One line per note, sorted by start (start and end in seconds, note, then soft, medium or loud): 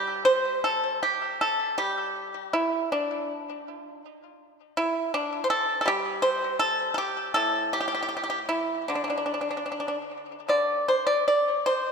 0.00 1.77 G3 soft
0.00 0.23 G4 medium
0.25 0.62 C5 medium
0.64 1.01 A4 medium
1.03 1.39 G4 medium
1.41 1.77 A4 medium
1.78 4.05 G3 soft
1.78 2.49 G4 medium
2.53 2.89 E4 medium
2.92 4.02 D4 medium
4.77 5.12 E4 medium
5.14 5.42 D4 medium
5.44 5.50 C5 medium
5.50 5.78 A4 medium
5.81 5.88 A4 medium
5.86 7.36 G3 medium
5.86 6.22 G4 medium
6.22 6.58 C5 medium
6.59 6.89 A4 medium
6.94 7.34 G4 medium
6.94 6.98 A4 medium
7.34 8.89 A2 medium
7.34 7.71 A4 medium
7.73 7.79 G4 medium
7.80 7.87 G4 soft
7.88 7.93 G4 medium
7.94 8.01 G4 soft
8.03 8.07 G4 medium
8.09 8.15 G4 soft
8.17 8.22 G4 soft
8.24 8.29 G4 soft
8.30 8.39 G4 medium
8.49 8.86 E4 medium
8.88 10.47 D3 soft
8.88 8.94 D4 medium
8.95 9.03 D4 soft
9.04 9.09 D4 soft
9.10 9.16 D4 soft
9.18 9.25 D4 soft
9.26 9.33 D4 soft
9.34 9.40 D4 soft
9.41 9.49 D4 soft
9.51 9.56 D4 soft
9.57 9.65 D4 soft
9.66 9.70 D4 soft
9.72 9.79 D4 soft
9.80 9.87 D4 soft
9.88 9.96 D4 soft
10.48 11.92 D3 soft
10.48 10.86 D5 medium
10.88 11.06 C5 medium
11.07 11.26 D5 medium
11.28 11.65 D5 medium
11.66 11.92 C5 medium